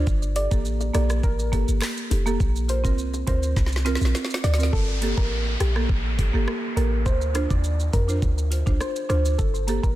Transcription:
0.07 G1, kick, shaker
0.22 shaker
0.35 G4 A4 D5, closed hi-hat, shaker
0.51 A1 A#3 G4 A4, kick, shaker
0.65 shaker
0.80 high bongo, shaker
0.94 A#1 A#3 G4 A4 D5, cross-stick, closed hi-hat, low bongo, shaker
1.10 cross-stick, shaker
1.23 A1 A#4, kick, shaker
1.39 shaker
1.52 A#3 G4 A4, kick, closed hi-hat, shaker
1.68 G1, shaker
1.82 cross-stick, clap, shaker
1.97 shaker
2.10 F1 G4 A4, closed hi-hat, high bongo, low bongo, shaker
2.26 A#3 G4 A4, shaker
2.40 A#1, kick, shaker
2.56 shaker
2.68 F4 A#4 C5, closed hi-hat, high bongo, shaker
2.84 C2 C4 F4 A#4, kick, shaker
2.98 shaker
3.13 high bongo, shaker
3.27 D2 C4 F4 A#4 C5, kick, closed hi-hat, low bongo, shaker
3.43 shaker
3.56 C2, kick, snare, high bongo, shaker
3.66 snare
3.72 snare, shaker
3.85 C4 F4 A#4, snare, closed hi-hat, high bongo, shaker
3.95 snare
4.01 A#1, high bongo, shaker
4.05 snare
4.15 snare, shaker
4.25 snare
4.30 snare, shaker
4.43 D2 F4 A#4 D5, snare, closed hi-hat, high bongo, low bongo, shaker
4.54 snare
4.59 C4 F4 A#4, shaker
4.63 snare
4.73 G1 A4, kick, downlifter
5.01 A#3 G4 A4, closed hi-hat
5.17 A1 A#4, kick
5.60 A#1 G4 A4, cross-stick, closed hi-hat
5.75 A#3 G4 A4, cross-stick
5.89 A1, kick
6.18 G4 A4, kick, closed hi-hat
6.33 G1 A#3 G4 A4
6.48 cross-stick
6.76 A1 A#3 G4 A4 A#4, closed hi-hat
7.06 D2 C5, kick, shaker
7.21 shaker
7.34 D4 F4 C5, cross-stick, closed hi-hat, shaker
7.50 D#2 D5, kick, shaker
7.64 shaker
7.80 shaker
7.93 F2 F4 A#4 C5, kick, closed hi-hat, shaker
8.08 D4 F4 C5, shaker
8.22 D2, kick, shaker
8.38 shaker
8.51 F4 C5, closed hi-hat, shaker
8.66 C2 D4 F4 C5, kick, shaker
8.81 C5, cross-stick, shaker
8.96 shaker
9.09 D2 D4 F4 C5, cross-stick, closed hi-hat, shaker
9.25 shaker
9.38 G1 A4, kick, shaker
9.54 shaker
9.67 A#3 G4 A4, closed hi-hat, shaker
9.83 A1 A#4, kick, shaker

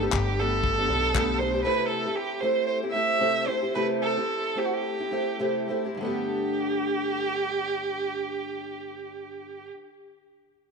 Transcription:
0.02 A3 B3 D4 G4
0.08 A4
0.12 G1 G4, kick, clap
0.39 A3 B3 D4 G4 A4
0.64 kick
0.77 A3 B3 D4 G4
0.88 B1 A3 B3 D4 G4
1.14 G2 D3 A3 B3 D4 G4, kick, clap
1.39 A3 B3 D4 G4 C5
1.54 A3 B3 D4 G4
1.65 C3 A3 C4 E4 G4 B4
1.89 A4
2.05 C4 E4 G4
2.15 G4
2.40 A3 C4 E4 C5
2.45 G4
2.67 C5
2.82 C4 E4 G4
2.92 A3 C4 E4 G4 E5
3.20 C3 A3 C4 E4 G4
3.46 A3 C4 E4 G4 C5
3.62 C4 E4 G4
3.75 C3 A3 C4 E4 G4 B4
4.02 A4
4.16 C4 E4 G4
4.55 A3 C4 E4 G4
4.65 F#4
4.73 G4
4.99 C4 E4 G4
5.11 A3 C4 E4 G4
5.39 C3 A3 C4 E4 G4
5.68 A3 C4 E4 G4
5.84 C4 E4 G4
5.95 G2 D3
6.00 A3 B3 G4
6.05 D4 G4

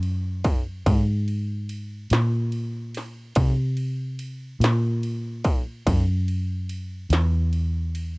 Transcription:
Already playing: F#2
0.03 ride
0.44 kick, ride
0.86 G#2, kick, ride
1.28 ride
1.69 ride
2.10 A#2, snare, ride
2.52 ride
2.94 snare, ride
3.35 C3, kick, ride
3.77 ride
4.19 ride
4.60 A#2, snare, ride
5.03 ride
5.44 kick, ride
5.87 F#2, kick, ride
6.28 ride
6.69 ride
7.10 E2, snare, ride
7.53 ride
7.95 ride

